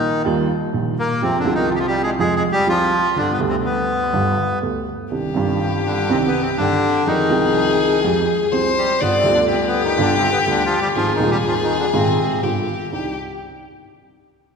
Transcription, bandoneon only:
0.00 0.23 D#3 medium
0.00 0.22 D#4 loud
0.99 1.23 A#3 medium
0.99 1.22 A#4 medium
1.22 1.38 C3 medium
1.22 1.39 C4 medium
1.39 1.54 D3 medium
1.39 1.54 D4 medium
1.55 1.70 D#3 medium
1.55 1.70 D#4 loud
1.71 1.72 F4 loud
1.76 1.86 F4 medium
1.76 1.79 G4 medium
1.80 1.87 F3 medium
1.87 2.03 G3 medium
1.87 2.02 G4 medium
2.03 2.11 G#3 medium
2.03 2.10 G#4 medium
2.20 2.35 G#3 medium
2.20 2.34 G#4 loud
2.36 2.44 G#3 medium
2.36 2.43 G#4 loud
2.52 2.68 G3 medium
2.52 2.68 G4 loud
2.69 3.14 F3 medium
2.69 3.18 F4 loud
3.17 3.32 D3 medium
3.17 3.33 D4 medium
3.32 3.39 B3 medium
3.32 3.40 B4 medium
3.48 3.57 C3 medium
3.48 3.56 C4 medium
3.64 4.58 B3 medium
3.64 4.59 B4 medium
5.86 6.09 D3 medium
5.86 6.11 D4 medium
6.10 6.18 C3 medium
6.10 6.17 C4 medium
6.27 6.41 B3 medium
6.27 6.42 B4 medium
6.42 6.51 C3 medium
6.42 6.49 C4 medium
6.57 7.04 D3 medium
6.57 7.08 D4 loud
7.07 8.01 D#3 medium
7.07 8.00 D#4 loud
8.78 9.00 G3 medium
8.78 9.00 G4 medium
9.02 9.16 B3 medium
9.02 9.16 B4 medium
9.18 9.33 C3 medium
9.18 9.33 C4 medium
9.34 9.41 D3 medium
9.34 9.41 D4 medium
9.50 9.55 C3 medium
9.50 9.56 C4 medium
9.62 9.66 C4 medium
9.67 9.83 B3 medium
9.67 9.82 B4 medium
9.84 9.98 D#3 medium
9.84 9.98 D#4 medium
10.00 10.14 D3 medium
10.00 10.16 D4 loud
10.16 10.30 C3 medium
10.16 10.31 C4 medium
10.32 10.40 B3 medium
10.32 10.39 B4 medium
10.49 10.63 D3 medium
10.49 10.64 D4 loud
10.65 10.79 F3 medium
10.65 10.80 F4 loud
10.81 10.88 G3 medium
10.81 10.89 G4 loud
10.97 11.11 F3 medium
10.97 11.13 F4 loud
11.14 11.28 D#3 medium
11.14 11.30 D#4 medium
11.31 11.37 G3 medium
11.31 11.38 G4 medium
11.47 11.54 F3 medium
11.47 11.54 F4 medium
11.63 11.77 D#3 medium
11.63 11.78 D#4 medium
11.79 11.86 D3 medium
11.79 11.87 D4 medium
11.96 12.41 C3 medium
11.96 12.41 C4 medium

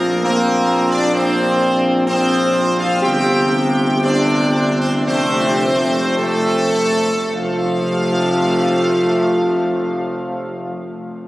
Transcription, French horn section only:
0.24 0.87 A#3 loud
0.93 1.14 D4 loud
1.15 2.05 C4 loud
2.06 2.74 C4 loud
2.79 3.01 F4 loud
3.01 3.98 G4 loud
4.02 4.76 D4 loud
4.81 5.06 C4 loud
5.07 6.13 C4 loud
6.18 7.18 A3 loud
7.35 10.71 F3 loud

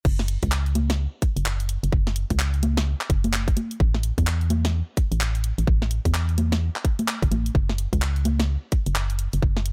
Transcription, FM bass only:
0.05 0.37 F#1 loud
0.43 1.07 C#2 loud
1.36 1.78 F#1 medium
1.83 1.90 F#1 loud
1.92 2.25 F#1 loud
2.30 2.95 C#2 loud
3.10 3.53 F#1 medium
3.80 4.12 A1 loud
4.18 4.82 E2 loud
5.12 5.53 A1 loud
5.58 5.65 A1 loud
5.67 6.00 A1 loud
6.05 6.70 E2 loud
7.22 7.29 G1 loud
7.31 7.50 A1 medium
7.55 7.87 F#1 loud
7.93 8.57 C#2 loud
8.87 9.28 F#1 loud
9.34 9.40 F#1 loud
9.42 9.73 F#1 loud

